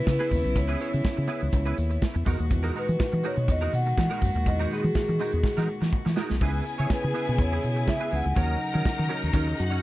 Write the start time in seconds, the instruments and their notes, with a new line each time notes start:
Already playing: string section C#3 B3 E4
0.06 fingered electric bass C#3, vibraphone B4, muted clean electric guitar stroke, kick, snare
0.19 clean electric guitar B3 E4 G#4 B4, closed hi-hat
0.30 fingered electric bass D#2, muted clean electric guitar stroke, kick, open hi-hat
0.44 fingered electric bass B1, muted clean electric guitar stroke, closed hi-hat
0.55 fingered electric bass C#2, vibraphone C#5, muted clean electric guitar stroke, kick, closed hi-hat
0.68 clean electric guitar B3 E4 G#4 B4, closed hi-hat
0.80 clean electric guitar B3 E4 G#4 C#5, closed hi-hat
0.92 fingered electric bass C#3, muted clean electric guitar stroke, closed hi-hat
1.04 muted clean electric guitar stroke, kick, snare
1.16 fingered electric bass C#3, muted clean electric guitar stroke, closed hi-hat
1.27 clean electric guitar B3 E4 G#4 B4, closed hi-hat
1.41 fingered electric bass C#2, muted clean electric guitar stroke, closed hi-hat
1.53 fingered electric bass C#2, muted clean electric guitar stroke, kick, closed hi-hat
1.66 clean electric guitar B3 E4 G#4 B4, closed hi-hat
1.77 fingered electric bass D#2, muted clean electric guitar stroke, closed hi-hat
1.90 muted clean electric guitar stroke, closed hi-hat
2.02 kick, snare
2.14 fingered electric bass E2, muted clean electric guitar stroke, closed hi-hat
2.25 fingered electric bass E2, string section A#2 D#3 G#3 F#4, clean electric guitar G#3 D#4 F#4 A#4, kick, open hi-hat
2.39 fingered electric bass D#2, muted clean electric guitar stroke, closed hi-hat
2.50 fingered electric bass E2, muted clean electric guitar stroke, kick, closed hi-hat
2.63 clean electric guitar G#3 D#4 F#4 A#4, closed hi-hat
2.75 clean electric guitar G#3 D#4 F#4 A#4, vibraphone B4, closed hi-hat
2.88 fingered electric bass E3, muted clean electric guitar stroke, closed hi-hat
2.99 muted clean electric guitar stroke, kick, snare
3.12 fingered electric bass E3, muted clean electric guitar stroke, closed hi-hat
3.23 clean electric guitar G#3 D#4 F#4 A#4, vibraphone C#5, closed hi-hat
3.36 fingered electric bass B2, muted clean electric guitar stroke, closed hi-hat
3.48 fingered electric bass E2, vibraphone D#5, muted clean electric guitar stroke, kick, closed hi-hat
3.61 clean electric guitar G#3 D#4 F#4 A#4, closed hi-hat
3.73 fingered electric bass B2, vibraphone F#5, muted clean electric guitar stroke, closed hi-hat
3.86 muted clean electric guitar stroke, closed hi-hat
3.97 fingered electric bass E3, muted clean electric guitar stroke, kick, snare
4.10 clean electric guitar G#3 D#4 F#4 A#4, closed hi-hat
4.21 fingered electric bass F#2, muted clean electric guitar stroke, kick, open hi-hat
4.35 fingered electric bass D#2, muted clean electric guitar stroke, closed hi-hat
4.46 fingered electric bass E2, vibraphone D#5, muted clean electric guitar stroke, kick, closed hi-hat
4.59 clean electric guitar G#3 D#4 F#4 A#4, closed hi-hat
4.71 clean electric guitar G#3 D#4 F#4 B4, vibraphone G#4, closed hi-hat
4.79 vibraphone F#4
4.84 fingered electric bass E3, vibraphone G#4, muted clean electric guitar stroke, closed hi-hat
4.95 muted clean electric guitar stroke, kick, snare
5.08 fingered electric bass E3, muted clean electric guitar stroke, closed hi-hat
5.19 clean electric guitar G#3 D#4 F#4 A#4, open hi-hat
5.32 fingered electric bass E2, muted clean electric guitar stroke, closed hi-hat
5.43 muted clean electric guitar stroke, kick, snare
5.57 fingered electric bass E3, clean electric guitar G#3 D#4 F#4 A#4, snare
5.68 muted clean electric guitar stroke
5.81 fingered electric bass E3, muted clean electric guitar stroke, snare
5.93 kick
6.05 fingered electric bass E3, muted clean electric guitar stroke, snare
6.16 clean electric guitar G#3 D#4 F#4 A#4, snare
6.29 fingered electric bass B1, muted clean electric guitar stroke, snare
6.41 fingered electric bass C#2, string section C#3 B3 E4 G#4 G#5, clean electric guitar B3 E4 G#4 B4, kick, crash
6.65 muted clean electric guitar stroke, closed hi-hat
6.78 fingered electric bass C#3, clean electric guitar B3 E4 G#4 C#5, closed hi-hat
6.86 vibraphone C#5
6.90 vibraphone B4, muted clean electric guitar stroke, kick, snare
7.02 fingered electric bass C#3, muted clean electric guitar stroke, closed hi-hat
7.14 clean electric guitar B3 E4 G#4 B4, open hi-hat
7.26 fingered electric bass B2, muted clean electric guitar stroke, snare, closed hi-hat
7.38 fingered electric bass E2, vibraphone C#5, muted clean electric guitar stroke, kick, closed hi-hat
7.52 clean electric guitar B3 E4 G#4 B4
7.63 fingered electric bass B2, muted clean electric guitar stroke, closed hi-hat
7.76 muted clean electric guitar stroke, closed hi-hat
7.87 fingered electric bass C#3, vibraphone E5, muted clean electric guitar stroke, kick, snare
8.00 clean electric guitar B3 E4 G#4 B4
8.11 fingered electric bass C#2, clean electric guitar B3 E4 G#4 B4, vibraphone F#5, open hi-hat
8.25 fingered electric bass C#2, muted clean electric guitar stroke, closed hi-hat
8.35 fingered electric bass D#2, string section C#3 F#3 D#4 A#4 A#5, clean electric guitar F#3 C#4 D#4 A#4, kick, closed hi-hat
8.49 closed hi-hat
8.60 muted clean electric guitar stroke, closed hi-hat
8.73 fingered electric bass D#3, clean electric guitar F#3 C#4 D#4 A#4, closed hi-hat
8.85 muted clean electric guitar stroke, kick, snare
8.98 fingered electric bass D#3, muted clean electric guitar stroke
9.09 clean electric guitar F#3 C#4 D#4 A#4, open hi-hat
9.21 fingered electric bass D#2, muted clean electric guitar stroke, snare, closed hi-hat
9.33 fingered electric bass D#2, clean electric guitar F#3 C#4 D#4 A#4, kick, closed hi-hat
9.47 muted clean electric guitar stroke, closed hi-hat
9.58 fingered electric bass F#2, string section F#4 F#5, muted clean electric guitar stroke, closed hi-hat
9.70 clean electric guitar F#3 C#4 D#4 C#5, closed hi-hat